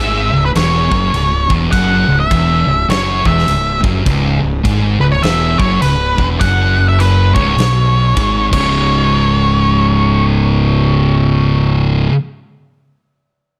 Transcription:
0.00 0.30 G#1 medium
0.00 0.31 G#2 loud
0.00 0.45 E5 loud
0.32 0.54 C#1 medium
0.32 0.51 C#2 medium
0.45 0.50 B4 medium
0.55 0.89 E1 loud
0.55 0.90 E2 loud
0.55 1.50 C#5 medium
0.55 snare loud
0.55 crash medium
0.90 1.12 F#1 medium
0.90 1.13 F#2 loud
0.90 kick loud
1.14 1.48 C#1 medium
1.14 1.43 C#2 medium
1.14 crash medium
1.49 1.71 E1 medium
1.49 1.71 E2 loud
1.49 kick loud
1.72 2.06 F#1 medium
1.72 2.07 F#2 loud
1.72 2.19 F#5 loud
1.72 kick loud
1.72 crash medium
2.08 2.29 C#1 medium
2.08 2.26 C#2 medium
2.20 2.86 E5 loud
2.30 2.65 E1 loud
2.30 2.66 E2 loud
2.30 kick loud
2.30 crash medium
2.66 2.88 C#1 medium
2.66 2.85 C#2 medium
2.89 3.23 F#1 loud
2.89 3.24 F#2 loud
2.89 3.27 C#5 medium
2.89 snare loud
2.89 crash medium
3.25 3.46 E1 loud
3.25 3.47 E2 loud
3.25 3.80 E5 medium
3.25 kick loud
3.39 snare soft
3.47 3.82 C#1 medium
3.47 3.76 C#2 medium
3.47 crash medium
3.83 4.05 F#1 loud
3.83 4.05 F#2 loud
3.83 kick loud
4.05 4.40 C#1 medium
4.05 4.40 C#2 loud
4.05 kick loud
4.05 crash medium
4.42 4.63 C#1 medium
4.42 4.60 C#2 medium
4.64 4.99 G#1 medium
4.64 4.99 G#2 loud
4.64 kick loud
4.64 crash medium
5.00 5.22 C#1 medium
5.00 5.19 C#2 medium
5.00 5.06 B4 medium
5.12 5.24 C#5 medium
5.22 5.57 E1 loud
5.22 5.58 E2 loud
5.22 5.60 E5 medium
5.22 snare loud
5.22 crash medium
5.58 5.81 F#1 medium
5.58 5.81 F#2 loud
5.58 5.81 C#5 medium
5.58 kick loud
5.82 6.16 C#1 medium
5.82 6.11 C#2 medium
5.82 6.26 B4 medium
5.82 crash medium
6.18 6.39 E1 loud
6.18 6.40 E2 loud
6.18 kick loud
6.40 7.32 F#1 medium
6.40 7.34 F#2 loud
6.40 6.88 F#5 loud
6.40 kick loud
6.40 crash medium
6.88 7.00 E5 loud
7.00 7.33 B4 medium
7.00 crash medium
7.35 7.57 C#1 loud
7.35 7.57 C#2 loud
7.35 8.48 C#5 medium
7.35 kick loud
7.57 8.13 B1 medium
7.57 8.16 B2 loud
7.57 snare loud
7.57 crash medium
8.16 8.50 G#1 loud
8.16 8.51 G#2 loud
8.16 kick loud
8.16 crash medium
8.51 12.06 C#1 loud
8.51 12.09 C#2 medium
8.51 12.11 G#2 loud
8.51 12.12 C#3 loud
8.51 11.86 C#5 medium
8.51 kick loud
8.51 crash medium

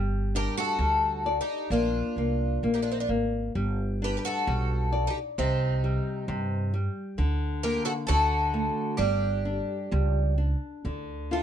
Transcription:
0.00 0.46 G1 medium
0.00 0.79 G3 medium
0.35 0.78 D4 medium
0.35 0.56 G4 medium
0.35 0.56 A#4 loud
0.57 1.37 F#4 loud
0.57 1.38 A4 loud
0.79 1.38 D2 loud
0.79 1.24 G3 medium
1.26 1.70 D5 medium
1.41 1.69 D#4 medium
1.41 1.69 G4 medium
1.70 2.00 A#1 medium
1.70 2.17 A#3 medium
1.70 2.69 D4 medium
1.70 2.70 F4 medium
2.16 2.58 C2 medium
2.16 2.62 A#3 medium
2.63 3.05 A#1 medium
2.63 3.08 A#3 medium
2.74 2.81 D#4 medium
2.74 2.82 G4 medium
2.82 2.90 D4 medium
2.82 2.91 F4 medium
2.91 2.99 C4 medium
2.91 3.00 D#4 medium
3.00 3.08 D4 medium
3.00 3.09 F4 medium
3.09 3.51 G#1 medium
3.09 3.54 A#3 soft
3.55 4.15 G1 medium
3.55 4.46 G3 medium
4.02 4.46 D4 medium
4.02 4.16 G4 medium
4.02 4.17 B4 medium
4.17 4.24 G4 soft
4.17 4.25 B4 medium
4.25 5.04 F#4 medium
4.25 5.10 A4 loud
4.47 5.07 B1 loud
4.47 4.92 G3 medium
4.92 5.37 D5 medium
5.07 5.16 D#4 medium
5.07 5.18 G4 medium
5.38 5.97 C2 medium
5.38 6.27 C3 medium
5.38 6.70 C4 medium
5.38 6.70 D#4 medium
5.84 6.28 G3 soft
6.28 6.87 G2 loud
6.28 6.72 C3 medium
6.74 7.17 G3 medium
7.18 7.77 D2 medium
7.18 8.05 D3 medium
7.63 8.07 A#3 medium
7.63 7.84 G4 medium
7.63 7.84 A#4 loud
7.85 7.91 F#4 medium
7.85 7.91 A4 loud
8.07 8.68 D2 loud
8.07 8.96 D3 medium
8.07 8.95 F#4 loud
8.07 8.97 A4 loud
8.54 8.98 A3 medium
8.97 9.59 G1 loud
8.97 9.90 G3 medium
8.97 10.34 D4 medium
8.97 10.33 G4 medium
9.45 9.90 D4 soft
9.92 10.52 C#2 loud
9.92 10.37 G3 medium
10.38 10.83 D4 soft
10.85 11.43 D2 medium
10.85 11.43 D3 medium
11.31 11.43 D4 soft
11.31 11.43 F4 soft
11.31 11.43 F4 medium
11.31 11.43 A4 soft

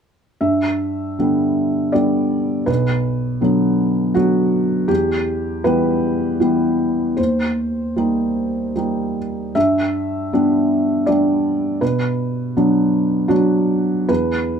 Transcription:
0.41 1.16 G2 soft
0.41 1.93 E5 soft
1.19 1.90 D3 soft
1.19 1.90 G3 soft
1.19 1.90 B3 soft
1.92 2.64 D3 soft
1.92 2.64 G3 soft
1.92 2.64 B3 soft
1.92 2.68 D5 soft
2.66 3.39 B1 soft
2.66 4.14 B4 medium
3.41 4.11 D3 soft
3.41 4.11 F#3 soft
3.41 4.11 B3 soft
4.14 4.85 D3 soft
4.14 4.85 F#3 soft
4.14 4.85 B3 soft
4.14 4.89 F#4 medium
4.88 5.61 E2 soft
4.88 5.63 G4 medium
5.64 6.37 E3 soft
5.64 6.37 G3 soft
5.64 6.37 B3 soft
5.64 7.18 B4 medium
6.40 7.14 E3 soft
6.40 7.14 G3 soft
6.40 7.14 B3 soft
7.17 7.94 D#2 soft
7.17 9.16 C5 soft
7.96 8.72 G3 soft
7.96 8.73 A#3 soft
7.96 8.73 D#4 soft
8.75 9.50 G3 soft
8.75 9.51 A#3 soft
8.75 9.51 D#4 soft
9.55 10.29 G2 soft
9.55 11.06 E5 medium
10.33 11.03 G3 soft
10.33 11.03 B3 soft
10.33 11.03 D4 soft
11.06 11.78 G3 soft
11.06 11.78 B3 soft
11.06 11.79 D4 soft
11.06 11.82 D5 soft
11.81 12.53 B2 soft
11.81 13.30 B4 medium
12.57 13.27 F#3 soft
12.57 13.27 B3 soft
12.57 13.27 D4 soft
13.28 14.05 F#3 soft
13.28 14.05 B3 soft
13.28 14.05 D4 soft
13.28 14.08 F#4 medium
14.09 14.60 E2 soft
14.09 14.60 B4 medium

